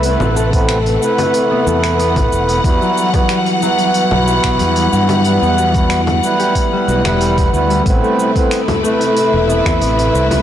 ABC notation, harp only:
X:1
M:4/4
L:1/16
Q:1/4=92
K:Ador
V:1 name="Harp"
B C A z4 B2 B, A z B,3 B, | z F, z B, G, z F, z3 G, B, G, z2 G- | G B, F z4 G2 G, F z G,3 G, | z A, z C B, z A, z3 B, C B, z2 B |]